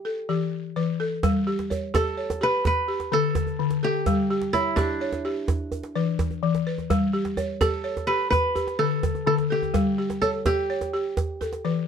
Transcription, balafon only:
0.05 0.76 A4 medium
0.29 0.75 E3 medium
0.29 1.00 G4 medium
0.76 1.23 E3 medium
0.76 1.47 B4 medium
1.00 1.47 A4 medium
1.24 1.71 G3 medium
1.47 1.93 G4 medium
1.70 2.16 C#5 medium
1.94 2.40 G4 medium
2.17 2.88 C#5 medium
2.41 2.65 G4 medium
2.88 3.59 G4 medium
3.12 3.58 D3 medium
3.12 3.82 A4 medium
3.60 4.07 D3 medium
3.83 4.30 A4 medium
4.07 4.54 G3 medium
4.30 4.76 G4 medium
4.54 5.00 C#5 medium
4.78 5.24 G4 medium
5.01 5.72 C#5 medium
5.25 5.48 G4 medium
5.96 6.42 E3 medium
5.96 6.66 B4 medium
6.43 6.90 E3 medium
6.67 7.14 B4 medium
6.90 7.38 G3 medium
7.13 7.60 G4 medium
7.37 7.83 C#5 medium
7.61 8.07 G4 medium
7.84 8.56 C#5 medium
8.08 8.32 G4 medium
8.55 9.27 G4 medium
8.79 9.25 D3 medium
8.79 9.49 A4 medium
9.27 9.74 D3 medium
9.50 9.98 A4 medium
9.74 10.22 G3 medium
9.98 10.45 G4 medium
10.22 10.69 C#5 medium
10.46 10.92 G4 medium
10.70 11.41 C#5 medium
10.94 11.17 G4 medium
11.41 11.88 A4 soft
11.65 11.88 E3 medium
11.65 11.88 B4 medium

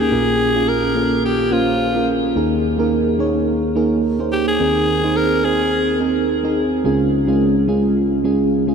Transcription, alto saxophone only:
0.00 0.70 G#4 medium
0.69 1.24 A#4 loud
1.25 1.54 G4 medium
1.52 2.08 F4 medium
4.32 4.47 G4 medium
4.48 5.18 G#4 medium
5.17 5.46 A#4 loud
5.45 6.01 G#4 medium

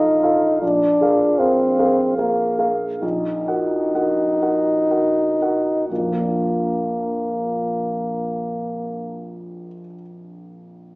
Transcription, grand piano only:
0.00 0.62 A#1 soft
0.00 0.23 F4 soft
0.00 0.24 A4 soft
0.00 0.24 F5 soft
0.23 0.58 F4 soft
0.23 0.58 A4 soft
0.23 0.59 F5 soft
0.62 0.99 A#1 soft
1.01 1.36 G#4 soft
1.01 1.36 A#4 soft
1.01 1.36 F5 soft
1.39 1.74 G#4 soft
1.39 1.74 A#4 soft
1.39 1.75 F5 soft
1.79 2.15 G#4 soft
1.79 2.15 A#4 soft
1.79 2.15 F5 soft
2.18 2.55 G#4 soft
2.18 2.56 A#4 soft
2.18 2.56 F5 soft
2.59 2.98 G#4 soft
2.59 2.98 A#4 soft
2.59 2.98 F5 soft
3.02 3.46 A#1 soft
3.48 3.91 F#4 soft
3.48 3.91 A#4 soft
3.48 3.91 F#5 soft
3.95 4.38 F#4 soft
3.95 4.38 A#4 soft
3.95 4.38 F#5 soft
4.42 4.85 F#4 soft
4.42 4.85 A#4 soft
4.42 4.86 F#5 soft
4.91 5.37 F#4 soft
4.91 5.37 A#4 soft
4.91 5.37 F#5 soft
5.41 5.86 F#4 soft
5.41 5.86 A#4 soft
5.41 5.87 F#5 soft
5.91 9.65 A#1 soft
5.98 9.72 F2 soft
6.06 9.80 F3 soft
6.13 9.87 A#3 soft
6.20 9.94 D4 soft
6.28 10.02 F4 soft

